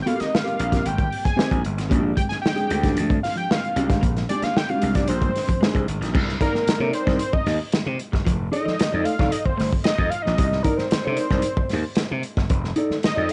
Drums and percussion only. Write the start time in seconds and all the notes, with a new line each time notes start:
0.07 closed hi-hat
0.20 snare, closed hi-hat
0.35 snare
0.47 closed hi-hat
0.59 closed hi-hat
0.72 kick, snare, closed hi-hat
0.85 closed hi-hat
0.98 kick, closed hi-hat
1.12 open hi-hat
1.25 kick, closed hi-hat
1.39 snare
1.51 kick, closed hi-hat
1.65 closed hi-hat
1.78 snare, closed hi-hat
1.91 kick, closed hi-hat
2.17 kick, closed hi-hat
2.31 snare, closed hi-hat
2.46 snare
2.57 closed hi-hat
2.70 closed hi-hat
2.83 kick, snare, closed hi-hat
2.97 closed hi-hat
3.10 kick, closed hi-hat
3.24 snare, open hi-hat
3.38 closed hi-hat
3.51 snare
3.64 closed hi-hat
3.76 closed hi-hat
3.90 kick, snare, closed hi-hat
4.03 kick, closed hi-hat
4.17 snare, closed hi-hat
4.29 closed hi-hat
4.42 snare, closed hi-hat
4.57 snare
4.69 closed hi-hat
4.82 closed hi-hat
4.95 kick, snare, closed hi-hat
5.08 closed hi-hat
5.22 kick, closed hi-hat
5.35 snare, open hi-hat
5.49 kick, closed hi-hat
5.63 snare
5.75 kick, closed hi-hat
5.88 closed hi-hat
6.02 snare, closed hi-hat
6.15 kick, crash
6.29 snare
6.41 kick, closed hi-hat
6.55 snare
6.68 snare, closed hi-hat
6.93 closed hi-hat
7.07 kick, snare
7.19 closed hi-hat
7.33 kick
7.46 snare, open hi-hat
7.72 snare, closed hi-hat
7.99 closed hi-hat
8.13 kick, snare
8.27 kick, closed hi-hat
8.53 closed hi-hat
8.68 snare
8.79 snare, closed hi-hat
9.05 closed hi-hat
9.19 kick, snare
9.32 closed hi-hat
9.46 kick
9.59 snare, open hi-hat
9.73 kick
9.84 snare, closed hi-hat
9.98 kick
10.12 closed hi-hat
10.26 snare
10.38 kick, closed hi-hat
10.52 snare
10.64 kick, closed hi-hat
10.78 snare
10.91 snare, closed hi-hat
11.17 closed hi-hat
11.31 kick, snare
11.42 closed hi-hat
11.57 kick
11.69 snare, open hi-hat
11.95 snare, closed hi-hat
12.23 closed hi-hat
12.37 kick, snare
12.50 kick, closed hi-hat
12.64 snare
12.76 closed hi-hat
12.91 snare
13.03 snare, closed hi-hat
13.29 closed hi-hat